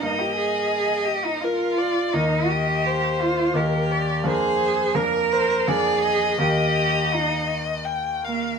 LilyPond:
<<
  \new Staff \with { instrumentName = "Violin" } { \time 3/4 \key ees \major \tempo 4 = 85 ees''2 bes'8 d''8 | ees''4 c''4 bes'8 d''8 | c''4 bes'8 c''8 d''8 ees''8~ | ees''2 g''8 f''8 | }
  \new Staff \with { instrumentName = "Cello" } { \time 3/4 \key ees \major ees'16 g'16 aes'4 g'16 ees'16 f'4 | ees'8 g'4 f'8 g'4 | aes'4 bes'4 aes'4 | g'4 ees'8 r4 bes8 | }
  \new Staff \with { instrumentName = "Grand piano" } { \time 3/4 \key ees \major <g, bes ees' bes'>2. | <ees, bes ees' bes'>2 <ees, bes ees' bes'>4 | <f, bes d' bes'>4 <f, bes d' bes'>4 <f, bes d' bes'>4 | <ees, bes ees' g'>2. | }
>>